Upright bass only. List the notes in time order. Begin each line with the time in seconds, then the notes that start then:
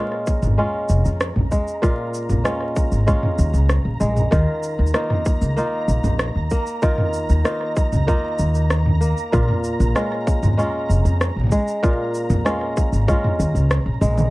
0.42 G#1
0.89 F1
1.05 F2
1.36 A#1
2.29 A#1
2.92 G#1
3.38 D#2
3.53 C#2
3.85 A#1
4.01 A#1
4.32 D#2
4.79 D#2
5.41 C#2
5.88 A#1
6.04 A#1
6.35 D#2
7.29 D#2
7.92 C#2
8.39 D#2
9.33 A#1
9.80 A#1
10.42 G#1
10.89 F1
11.05 F2
11.36 A#1
12.30 A#1
12.92 G#1
13.39 D#2
13.55 C#2
13.86 A#1
14.01 A#1